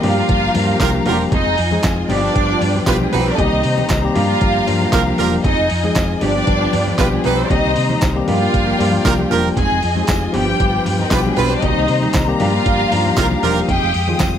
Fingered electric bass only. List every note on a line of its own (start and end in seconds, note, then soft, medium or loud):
0.04 0.21 G2 loud
0.30 0.47 G1 loud
0.55 0.72 G2 loud
0.81 0.98 C2 loud
1.07 1.24 E1 medium
1.33 1.41 F1 loud
1.46 1.54 F1 loud
1.59 1.76 F2 medium
1.85 2.01 F1 loud
2.10 2.27 G1 loud
2.36 2.53 G1 loud
2.62 2.79 G2 loud
2.87 3.04 B1 loud
3.13 3.30 B1 loud
3.39 3.48 C2 loud
3.53 3.61 C2 medium
3.65 3.82 C3 medium
3.90 4.07 C2 loud
4.16 4.33 G2 loud
4.42 4.59 G1 loud
4.68 4.85 G2 medium
4.93 5.10 C2 loud
5.20 5.36 E1 loud
5.45 5.54 F1 loud
5.59 5.67 F1 medium
5.71 5.88 F2 medium
5.96 6.13 F1 medium
6.23 6.39 G1 loud
6.48 6.65 G1 loud
6.74 6.91 G2 medium
6.99 7.16 B1 medium
7.25 7.42 B1 medium
7.51 7.60 C2 loud
7.65 7.73 C2 loud
7.77 7.94 C3 loud
8.03 8.20 C2 loud
8.29 8.46 G2 loud
8.55 8.71 G1 loud
8.81 8.97 G2 loud
9.06 9.23 C2 loud
9.32 9.48 E1 medium
9.57 9.66 F1 loud
9.72 9.79 F1 loud
9.84 10.00 F2 medium
10.09 10.26 F1 loud
10.35 10.52 G1 loud
10.60 10.77 G1 loud
10.87 11.03 G2 medium
11.11 11.28 B1 loud
11.38 11.55 B1 medium
11.63 11.72 C2 loud
11.77 11.85 C2 loud
11.89 12.06 C3 medium
12.15 12.32 C2 loud
12.41 12.58 G2 loud
12.66 12.83 G1 loud
12.93 13.09 G2 loud
13.17 13.34 C2 loud
13.43 13.60 E1 loud
13.69 13.78 F1 loud
13.83 13.91 F1 loud
13.95 14.12 F2 medium
14.20 14.37 F1 loud